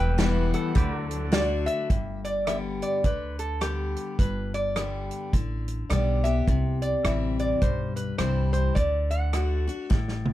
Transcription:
Already playing: upright bass E1, steel-string acoustic guitar E2, string section E3 G3 B3, pedal steel guitar G4 B4 E5, resonator guitar played with a steel bar B4 G5
0.18 steel-string acoustic guitar E3 G3 B3 E4, snare, closed hi-hat
0.54 resonator guitar played with a steel bar A4 F#5, closed hi-hat
0.75 upright bass D2, steel-string acoustic guitar D3, string section D3 F#3 A3, pedal steel guitar G4 B4 D5, kick, closed hi-hat
0.96 pedal steel guitar F#4
1.02 pedal steel guitar A4
1.11 closed hi-hat
1.32 steel-string acoustic guitar D3 A3 D4 F#4, resonator guitar played with a steel bar D5, snare, closed hi-hat
1.66 resonator guitar played with a steel bar E5, closed hi-hat
1.90 upright bass G1, steel-string acoustic guitar G2, kick, closed hi-hat
2.25 resonator guitar played with a steel bar D5, closed hi-hat
2.47 steel-string acoustic guitar D3 G3 B3 G4, resonator guitar played with a steel bar E5, cross-stick, closed hi-hat
2.82 resonator guitar played with a steel bar D5, closed hi-hat
3.04 upright bass D2, steel-string acoustic guitar D3, resonator guitar played with a steel bar B4, kick, closed hi-hat
3.39 resonator guitar played with a steel bar A4, closed hi-hat
3.61 steel-string acoustic guitar D3 G3 B3 G4, resonator guitar played with a steel bar G4, cross-stick, closed hi-hat
3.96 closed hi-hat
4.19 upright bass G1, steel-string acoustic guitar G2, resonator guitar played with a steel bar B4, kick, closed hi-hat
4.54 resonator guitar played with a steel bar D5, closed hi-hat
4.76 steel-string acoustic guitar D3 G3 B3 G4, cross-stick, closed hi-hat
5.11 closed hi-hat
5.33 upright bass A1, steel-string acoustic guitar D3, kick, closed hi-hat
5.68 closed hi-hat
5.90 upright bass B1, steel-string acoustic guitar D3 G3 B3 G4, resonator guitar played with a steel bar D5, cross-stick, closed hi-hat
6.24 steel-string acoustic guitar B3 G4, resonator guitar played with a steel bar E5, closed hi-hat
6.47 upright bass C2, steel-string acoustic guitar C3, kick, closed hi-hat
6.82 resonator guitar played with a steel bar D5, closed hi-hat
7.04 upright bass A1, steel-string acoustic guitar E3 G3 C4 E4, resonator guitar played with a steel bar E5, cross-stick, closed hi-hat
7.39 resonator guitar played with a steel bar D5, closed hi-hat
7.61 upright bass B1, steel-string acoustic guitar G2, resonator guitar played with a steel bar C5, kick, closed hi-hat
7.96 resonator guitar played with a steel bar B4, closed hi-hat
8.18 upright bass C2, steel-string acoustic guitar E3 G3 C4 E4, resonator guitar played with a steel bar C5, cross-stick, closed hi-hat
8.53 resonator guitar played with a steel bar C5, closed hi-hat
8.75 upright bass D2, steel-string acoustic guitar D3, resonator guitar played with a steel bar D5, kick, closed hi-hat
9.11 resonator guitar played with a steel bar F#5, closed hi-hat
9.33 steel-string acoustic guitar D3 A3 D4 F#4, cross-stick, closed hi-hat
9.67 steel-string acoustic guitar D4 F#4, closed hi-hat
9.87 steel-string acoustic guitar A2, resonator guitar played with a steel bar E5
9.91 upright bass A1, kick, snare
10.08 snare
10.26 high tom

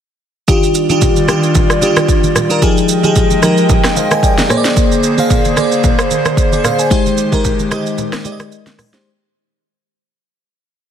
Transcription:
0.48 fm electric piano D#3 D4 F4 G4, analog synth pad D#3 G3 F4 D5, kick, shaker
0.63 shaker
0.75 shaker
0.89 fm electric piano D#3 D4 F4 G4, high conga, shaker
1.02 kick, low conga, shaker
1.16 high conga, shaker
1.28 fm electric piano D#3 D4 F4 G4, cross-stick, high conga, shaker
1.43 shaker
1.55 kick, low conga, shaker
1.70 cross-stick, shaker
1.81 fm electric piano D#3 D4 F4 G4, high conga, shaker
1.96 cross-stick, high conga, shaker
2.08 kick, shaker
2.23 high conga, shaker
2.36 cross-stick, low conga, shaker
2.49 fm electric piano D#3 D4 F4 A#4, shaker
2.62 fm electric piano F3 D#4 G4 G#4, analog synth pad F3 G#3 D#5 G5, kick, shaker
2.77 shaker
2.89 shaker
3.03 fm electric piano F3 D#4 G4 G#4, high conga, shaker
3.16 kick, low conga, shaker
3.30 high conga, shaker
3.42 fm electric piano F3 D#4 G4 A#4, cross-stick, high conga, shaker
3.57 shaker
3.69 kick, low conga, shaker
3.84 cross-stick, snare, shaker
3.96 fm electric piano C5 F5, high conga, shaker
4.11 fm electric piano D#5 G#5, cross-stick, high conga, shaker
4.23 fm electric piano D5 G5, kick, shaker
4.38 fm electric piano A#4 D#5, snare, high conga, shaker
4.49 analog synth pad D3 A#3 G#4 C5, fm electric piano A#3 G#4 C5 C#5, cross-stick, low conga, shaker
4.57 fm electric piano D5
4.65 snare, shaker
4.77 kick, shaker
4.92 shaker
5.03 shaker
5.18 fm electric piano A#3 G#4 C5 F5, high conga, shaker
5.30 kick, low conga, shaker
5.45 high conga, shaker
5.56 fm electric piano A#3 G#4 C5 D5, cross-stick, high conga, shaker
5.72 shaker
5.84 kick, low conga, shaker
5.99 cross-stick, shaker
6.11 high conga, shaker
6.25 cross-stick, high conga, shaker
6.37 kick, shaker
6.52 fm electric piano G#4 D5, high conga, shaker
6.64 fm electric piano C5 F5, cross-stick, low conga, shaker
6.79 fm electric piano D5 G#5, shaker
6.90 analog synth pad D#3 G#3 G4, fm electric piano G#3 D#4 G4 C5, kick, shaker
7.06 high conga, shaker
7.18 shaker
7.32 fm electric piano G#3 D#4 G4 A#4, kick, high conga, shaker
7.45 kick, low conga, shaker
7.59 high conga, shaker
7.71 fm electric piano G#3 D#4 G4 D#5, cross-stick, high conga, shaker
7.86 shaker
7.98 low conga, shaker
8.13 cross-stick, snare, shaker
8.24 fm electric piano G#3 D#4 G4 D5, high conga, shaker
8.32 fm electric piano D#5
8.39 cross-stick, high conga, shaker
8.52 shaker
8.66 snare, high conga, shaker
8.78 cross-stick, open hi-hat, low conga, shaker
8.93 fm electric piano G#3 D#4 G4 C5, snare, shaker

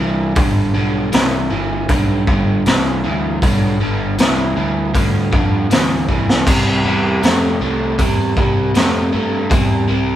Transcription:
Already playing: overdriven electric guitar G2 E3
0.00 picked electric bass C2
0.35 picked electric bass G1, overdriven electric guitar G2 D3, kick, open hi-hat
0.74 picked electric bass B1, overdriven electric guitar G2 D3
1.12 picked electric bass C2, overdriven electric guitar G2 E3, snare, open hi-hat
1.50 picked electric bass G1, overdriven electric guitar G2 E3
1.89 picked electric bass B1, overdriven electric guitar G2 D3, kick, open hi-hat
2.27 picked electric bass G1, overdriven electric guitar G2 D3, kick
2.66 picked electric bass C2, overdriven electric guitar G2 E3, snare, open hi-hat
3.04 picked electric bass D2, overdriven electric guitar G2 E3
3.42 picked electric bass B1, overdriven electric guitar G2 D3, kick, open hi-hat
3.80 picked electric bass G1, overdriven electric guitar G2 D3
4.17 picked electric bass C2, overdriven electric guitar G2 E3, snare, open hi-hat
4.56 picked electric bass D2, overdriven electric guitar G2 E3
4.94 picked electric bass D2, overdriven electric guitar G2 D3, kick, open hi-hat
5.32 picked electric bass F2, overdriven electric guitar G2 D3, kick
5.70 picked electric bass D2, overdriven electric guitar G2 E3, snare, open hi-hat
6.09 picked electric bass C2, overdriven electric guitar G2 E3, kick
6.29 snare
6.46 picked electric bass C2, overdriven electric guitar C3 G3, kick, open hi-hat, crash
6.84 picked electric bass E2, overdriven electric guitar C3 G3
7.23 picked electric bass F2, overdriven electric guitar C3 A3, snare, open hi-hat
7.61 picked electric bass C2, overdriven electric guitar C3 A3
7.98 picked electric bass E2, overdriven electric guitar C3 G3, kick, open hi-hat
8.37 picked electric bass C2, overdriven electric guitar C3 G3, kick
8.74 picked electric bass F2, overdriven electric guitar C3 A3, snare, open hi-hat
9.12 picked electric bass G2, overdriven electric guitar C3 A3
9.49 picked electric bass E2, overdriven electric guitar C3 G3, kick, open hi-hat
9.88 picked electric bass C2, overdriven electric guitar C3 G3

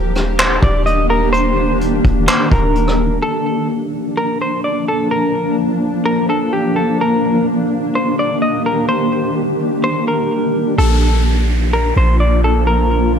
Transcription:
Already playing: 808-style bass D#1, ambient pad D#3 A#3 D4 G4
0.15 cross-stick, closed hi-hat
0.39 clean electric guitar C5, clap
0.62 808-style bass D#1, clean electric guitar D5, kick, closed hi-hat
0.86 clean electric guitar D#5, closed hi-hat
1.10 clean electric guitar A#4
1.33 clean electric guitar C5, closed hi-hat
1.81 closed hi-hat
2.04 808-style bass D#1, kick, closed hi-hat
2.28 clean electric guitar C5, clap, closed hi-hat
2.51 808-style bass D#1, clean electric guitar A#4, kick, closed hi-hat
2.75 closed hi-hat
2.88 cross-stick
3.22 ambient pad F3 A#3 D4 A5, clean electric guitar A4
4.17 clean electric guitar A#4
4.42 clean electric guitar C5
4.64 clean electric guitar D5
4.88 clean electric guitar A4
5.11 clean electric guitar A#4
6.06 clean electric guitar A#4
6.30 clean electric guitar A4
6.53 clean electric guitar G4
6.76 clean electric guitar A4
7.00 ambient pad D#3 G4, clean electric guitar A#4
7.95 clean electric guitar C5
8.19 clean electric guitar D5
8.42 clean electric guitar D#5
8.66 clean electric guitar A#4
8.89 clean electric guitar C5
9.84 clean electric guitar C5
10.08 clean electric guitar A#4
10.78 808-style bass A#1, ambient pad F3 A#3 D4 F4, clean electric guitar A4, downlifter
11.73 clean electric guitar A#4
11.96 808-style bass A#1, clean electric guitar C5
12.20 clean electric guitar D5
12.44 clean electric guitar A4
12.67 ambient pad G4, clean electric guitar A#4

